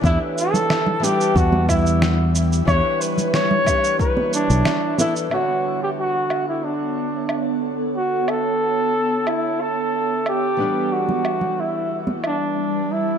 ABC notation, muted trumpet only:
X:1
M:4/4
L:1/16
Q:1/4=91
K:Bm
V:1 name="Muted trumpet"
E2 A4 G2 F2 E4 z2 | c2 B2 c4 B2 D4 E2 | F3 G F3 E D6 z2 | F2 A6 E2 A4 G2- |
G2 F4 E2 z2 D4 E2 |]